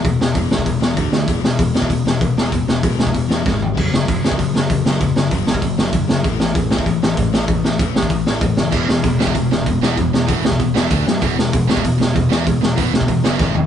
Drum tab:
CC |----------------|----------------|----------------|x---------------|
HH |o---o---o---o---|o---o---o---o---|o---o---o-------|----o---o---o---|
SD |--o---o---o---o-|--o---o---o---o-|--o---o---o-o---|--o---o---o---o-|
FT |----------------|----------------|--------------o-|----------------|
BD |o---o--oo---o---|o---o--oo---o---|o---o--oo---o---|o---o--oo---o---|

CC |----------------|----------------|----------------|x---------------|
HH |o---o---o---o---|o---o---o---o---|o---o---o---o---|----o---o---o---|
SD |--o---o---o---o-|--o---o---o---o-|--o---o---o---o-|--o---o---o---o-|
FT |----------------|----------------|----------------|----------------|
BD |o---o--oo---o---|o---o--oo---o---|o---o--oo---o---|o---o--oo---o---|

CC |----------------|----------------|----------------|
HH |o---o---o---o---|o---o---o---o---|o---o---o-------|
SD |--o---o---o---o-|--o---o---o---o-|--o---o---o-o---|
FT |----------------|----------------|--------------o-|
BD |o---o--oo---o---|o---o--oo---o---|o---o--oo---o---|